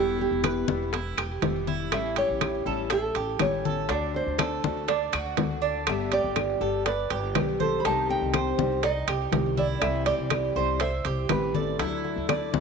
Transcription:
Already playing: upright bass E1, steel-string acoustic guitar B2 E3 G3 B3 E4, cuban tres E4, nylon-string guitar G4
0.19 nylon-string guitar G4, high bongo, high conga
0.31 upright bass E1
0.44 cuban tres B4, high bongo, high conga, high timbale, low timbale, claves
0.68 upright bass E1, steel-string acoustic guitar E3 G3 B3 E4, high bongo, high conga
0.93 cuban tres E4, muted steel-string acoustic guitar stroke, high bongo, high conga, high timbale
1.18 upright bass E1, cuban tres G4, high bongo, high conga, high timbale, claves
1.42 upright bass E1, steel-string acoustic guitar E3 G3 B3 E4, high bongo, low bongo, high conga, high timbale, low timbale
1.67 cuban tres E4, high conga
1.91 upright bass A1, steel-string acoustic guitar E3 G3 C#4 E4, nylon-string guitar E5, high bongo, high conga, high timbale, claves
2.16 cuban tres G4, nylon-string guitar C#5, high bongo, high conga, high timbale
2.29 upright bass A1
2.41 high bongo, high conga, high timbale, low timbale, claves
2.66 upright bass A1, steel-string acoustic guitar G3 C#4 E4, cuban tres A4, high bongo, high conga
2.90 nylon-string guitar A4, cuban tres E5, muted steel-string acoustic guitar stroke, high bongo, high conga, high timbale
3.15 upright bass A1, cuban tres G4, high bongo, high conga, high timbale
3.39 upright bass A1, steel-string acoustic guitar E3 G3 C#4 E4, nylon-string guitar C#5, high bongo, low bongo, high conga, high timbale, low timbale, claves
3.65 cuban tres A4, high conga
3.89 upright bass D2, steel-string acoustic guitar D3 A3 D4 F#4, cuban tres D4, nylon-string guitar D5, high bongo, high conga, high timbale
4.14 nylon-string guitar C5, high bongo, high conga
4.26 upright bass D2
4.38 cuban tres A4, high bongo, high conga, high timbale, low timbale, claves
4.64 upright bass D2, steel-string acoustic guitar A3 D4 F#4, high bongo, high conga
4.88 cuban tres D4, muted steel-string acoustic guitar stroke, high bongo, high conga, high timbale
5.13 upright bass D2, cuban tres F#4, high bongo, high conga, high timbale, claves
5.37 upright bass D2, steel-string acoustic guitar D3 A3 D4 F#4, high bongo, low bongo, high conga, high timbale, low timbale
5.62 cuban tres D4
5.86 upright bass G1, steel-string acoustic guitar D3 G3 B3 G4, nylon-string guitar E5, high bongo, high conga, high timbale, claves
6.12 cuban tres G4, nylon-string guitar D5, high bongo, high conga, high timbale
6.24 upright bass G1
6.36 high bongo, high conga, high timbale, low timbale, claves
6.61 upright bass G1, steel-string acoustic guitar G3 B3 G4, cuban tres A4, high bongo, high conga
6.85 nylon-string guitar B4, cuban tres D5, muted steel-string acoustic guitar stroke, high bongo, high conga, high timbale
7.10 upright bass G1, cuban tres G4, high bongo, high conga, high timbale
7.35 upright bass B1, steel-string acoustic guitar D3 G3 B3 G4, high bongo, low bongo, high conga, high timbale, low timbale, claves
7.60 nylon-string guitar A4, cuban tres C5, high conga
7.80 nylon-string guitar B5
7.85 upright bass C2, steel-string acoustic guitar C3 D#3 G3 C4 G4, cuban tres D#4, nylon-string guitar A5, high bongo, high conga, high timbale
8.09 nylon-string guitar G5, high bongo, high conga
8.21 upright bass C2
8.34 cuban tres C5, high bongo, high conga, high timbale, low timbale, claves
8.58 upright bass C2, steel-string acoustic guitar D#3 G3 C4 G4, high bongo, high conga
8.83 cuban tres D#4, nylon-string guitar D#5, muted steel-string acoustic guitar stroke, high bongo, high conga, high timbale
9.08 upright bass C2, cuban tres G4, high bongo, high conga, high timbale, claves
9.32 upright bass C2, steel-string acoustic guitar D#3 G3 C4 G4, high bongo, low bongo, high conga, high timbale, low timbale
9.57 cuban tres E4, nylon-string guitar D5, high conga
9.81 upright bass C2, steel-string acoustic guitar C3 E3 G3 C4 E4, nylon-string guitar E5, high bongo, high conga, high timbale, claves
10.06 cuban tres G4, nylon-string guitar D5, high bongo, high conga, high timbale
10.18 upright bass C2
10.30 high bongo, high conga, high timbale, low timbale, claves
10.56 upright bass C2, steel-string acoustic guitar E3 G3 C4 E4, cuban tres C5, high bongo, high conga
10.80 nylon-string guitar C5, cuban tres E5, muted steel-string acoustic guitar stroke, high bongo, high conga, high timbale
11.05 upright bass C2, cuban tres G4, high bongo, high conga, high timbale
11.29 upright bass A1, steel-string acoustic guitar E3 G3 C4 E4, nylon-string guitar B4, high bongo, low bongo, high conga, high timbale, low timbale, claves
11.54 nylon-string guitar A4, cuban tres D5, high conga
11.79 upright bass D2, steel-string acoustic guitar D3 F#3 A3 D4 E4, cuban tres E4, high bongo, high conga, high timbale
12.04 high bongo, high conga
12.16 upright bass D2
12.29 cuban tres D5, high bongo, high conga, high timbale, low timbale, claves
12.53 upright bass D2, steel-string acoustic guitar F#3 A3 D4 E4, high bongo, high conga

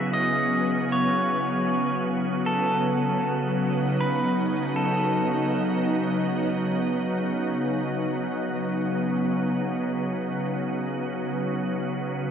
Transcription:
Already playing: ambient pad C#3 F#3 B3 E4, pedal steel guitar E5
0.13 pedal steel guitar D#5
0.92 pedal steel guitar C#5
2.46 pedal steel guitar A4
3.60 ambient pad D#4
4.01 pedal steel guitar B4
4.76 pedal steel guitar A4
7.06 ambient pad C#3

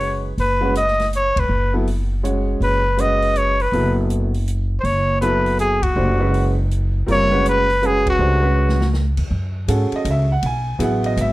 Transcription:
Already playing: upright bass F#1, upright piano G#3 C#4 F#4 B4, trumpet C#5
0.00 open hi-hat
0.38 upright bass F#1, trumpet B4, open hi-hat
0.61 upright piano G#3 C#4 F#4 B4
0.75 trumpet D#5, closed hi-hat
0.88 snare
0.99 snare, open hi-hat
1.13 trumpet C#5, closed hi-hat
1.36 upright bass E1, trumpet B4, kick, ride
1.49 upright bass F#1
1.73 upright piano F#3 B3 E4 A4
1.87 open hi-hat
2.23 upright piano G#3 C#4 F#4 C#5, closed hi-hat
2.60 upright bass F#1, trumpet B4, open hi-hat
2.97 upright piano G#3 C#4 F#4 B4, trumpet D#5, closed hi-hat
3.22 open hi-hat
3.36 trumpet C#5, closed hi-hat
3.60 trumpet B4, open hi-hat
3.72 upright bass F#1, upright piano F#3 B3 E4 A4, open hi-hat
4.10 closed hi-hat
4.34 open hi-hat
4.48 closed hi-hat
4.80 upright bass F#1, trumpet C5
4.84 trumpet C#5, open hi-hat
5.21 upright piano F#3 B3 E4 A4, trumpet B4, closed hi-hat
5.46 open hi-hat
5.59 trumpet G#4, closed hi-hat
5.83 trumpet F#4, kick, ride
5.96 upright bass F#1, upright piano A3 D4 G4 C5
6.20 upright piano G#3 C#4 F#4 B4
6.34 open hi-hat
6.71 closed hi-hat
7.07 upright bass F#1, upright piano G3 C4 F4 A#4, open hi-hat
7.12 trumpet C#5
7.31 upright piano G#3 C#4 F#4 B4
7.46 trumpet B4, closed hi-hat
7.70 open hi-hat
7.82 upright piano G#3 C#4 F#4 B4, trumpet G#4, closed hi-hat
8.06 trumpet F#4, kick, ride
8.19 upright bass C#2, upright piano A3 D4 G4 C5
8.43 upright piano G#3 C#4 F#4 B4
8.69 snare
8.81 snare
8.93 snare
9.17 upright bass E2, kick, crash
9.31 upright bass F#2
9.68 upright bass G#2, upright piano C#4 F#4 G#4 A4, hi-hat pedal, ride
9.92 upright piano D#5, muted upright bass stroke, ride
10.05 upright bass C#2, hi-hat pedal, ride
10.11 upright piano E5
10.32 upright piano F#5
10.42 upright bass B1, upright piano G#5, ride
10.79 upright bass A1, upright piano F#3 B3 E4 G#4, hi-hat pedal, ride
10.83 upright piano F#5
11.04 upright piano D#5, ride
11.17 upright bass G#1, hi-hat pedal, ride
11.21 upright piano E5

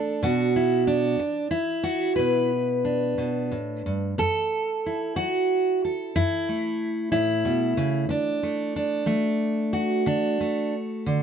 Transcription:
Already playing: steel-string acoustic guitar A3 D4 A4
0.23 steel-string acoustic guitar B2 F#4
0.56 steel-string acoustic guitar E4
0.87 steel-string acoustic guitar D4
1.19 muted steel-string acoustic guitar stroke
1.51 steel-string acoustic guitar E4
1.83 steel-string acoustic guitar F#4
2.16 steel-string acoustic guitar B2 B4
2.85 steel-string acoustic guitar D4
3.18 steel-string acoustic guitar B2
3.52 steel-string acoustic guitar A2
3.86 steel-string acoustic guitar G2
4.18 steel-string acoustic guitar F#2 A4
4.86 steel-string acoustic guitar E4
5.16 steel-string acoustic guitar F#3 F#4
5.85 steel-string acoustic guitar A4
6.16 steel-string acoustic guitar F#2 E4
6.49 steel-string acoustic guitar A3
7.12 steel-string acoustic guitar A2 E4
7.45 steel-string acoustic guitar B2
7.77 steel-string acoustic guitar C#3
8.09 steel-string acoustic guitar D3 D4
8.43 steel-string acoustic guitar A3
8.76 steel-string acoustic guitar D4
9.06 steel-string acoustic guitar F#3 A3
9.73 steel-string acoustic guitar F#4
10.06 steel-string acoustic guitar D3 D4
10.41 steel-string acoustic guitar A3
11.06 steel-string acoustic guitar D3

